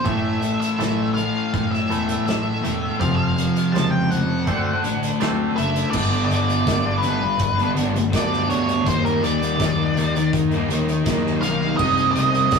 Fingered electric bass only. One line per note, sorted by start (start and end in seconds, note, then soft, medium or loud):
0.06 0.56 A1 medium
0.80 1.30 A1 medium
1.54 1.79 A1 loud
1.90 2.15 E1 medium
2.28 2.53 A1 medium
2.65 2.90 E1 medium
3.01 3.50 F1 medium
3.75 4.25 C#2 medium
4.48 4.73 D2 loud
4.85 5.10 A1 medium
5.22 5.47 D2 loud
5.58 5.83 F#1 medium
5.93 6.27 G1 medium
6.31 6.64 G1 loud
6.67 7.37 G1 loud
7.39 7.73 G1 loud
7.76 8.10 G1 medium
8.13 8.83 D2 loud
8.87 9.21 D#2 medium
9.23 9.57 D#2 medium
9.60 9.94 D#2 medium
9.96 10.30 D#2 loud
10.33 10.67 D#2 loud
10.72 11.04 D#2 medium
11.06 11.40 D#2 medium
11.45 11.78 B1 medium
11.79 12.13 C2 medium
12.18 12.51 C2 medium
12.52 12.59 C2 medium